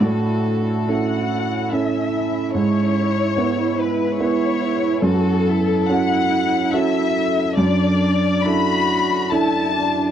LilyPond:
<<
  \new Staff \with { instrumentName = "Violin section" } { \time 3/4 \key fis \minor \tempo 4 = 71 a'4 fis''4 e''4 | cis''4. b'8 cis''4 | a'4 fis''4 e''4 | d''4 b''4 a''4 | }
  \new Staff \with { instrumentName = "Ambient pad" } { \time 3/4 \key fis \minor << { a'2. | gis'2. | a'2.~ | a'2. | } \\ { <cis' e'>2. | <b e'>2. | <cis' fis'>2. | <d' e'>2. | } >> }
  \new Staff \with { instrumentName = "Cello" } { \time 3/4 \key fis \minor fis'2 cis'8 e'8~ | e'2 e'4 | fis'8 e'2~ e'8 | d'4 fis'4 e'8 d'8 | }
  \new Staff \with { instrumentName = "Grand piano" } { \time 3/4 \key fis \minor a,4 <cis' e' a'>4 <cis' e' a'>4 | gis,4 <b e' b'>4 <b e' b'>4 | fis,4 <cis' fis' a'>4 <cis' fis' a'>4 | fis,4 <d' e' a'>4 <d' e' a'>4 | }
>>